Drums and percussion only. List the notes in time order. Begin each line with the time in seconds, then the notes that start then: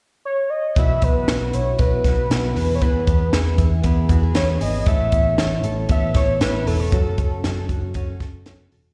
0.76 kick, closed hi-hat
1.02 kick, closed hi-hat
1.28 snare, closed hi-hat
1.53 closed hi-hat
1.79 kick, closed hi-hat
2.04 kick, snare, closed hi-hat
2.31 snare, closed hi-hat
2.56 open hi-hat
2.82 kick, closed hi-hat
3.07 kick, closed hi-hat
3.33 snare, closed hi-hat
3.58 kick, closed hi-hat
3.84 kick, closed hi-hat
4.09 kick, closed hi-hat
4.35 snare, closed hi-hat
4.61 open hi-hat
4.86 kick, closed hi-hat
5.12 kick, closed hi-hat
5.38 snare, closed hi-hat
5.64 closed hi-hat
5.89 kick, closed hi-hat
6.14 kick, snare, closed hi-hat
6.41 snare, closed hi-hat
6.67 open hi-hat
6.92 kick, closed hi-hat
7.18 kick, closed hi-hat
7.44 snare, closed hi-hat
7.69 kick, closed hi-hat
7.94 kick, closed hi-hat
8.20 kick, snare, closed hi-hat
8.46 snare, closed hi-hat
8.72 open hi-hat